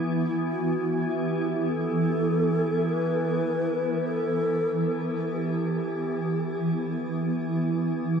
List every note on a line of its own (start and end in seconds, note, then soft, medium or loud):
0.00 8.20 E3 medium
0.00 8.20 B3 medium
0.00 8.20 E4 medium
0.52 1.13 F#4 medium
1.12 1.71 G4 medium
1.70 2.90 A4 medium
2.89 4.08 B4 medium
4.08 5.04 A4 medium
4.08 4.12 B4 medium
5.32 7.09 G4 medium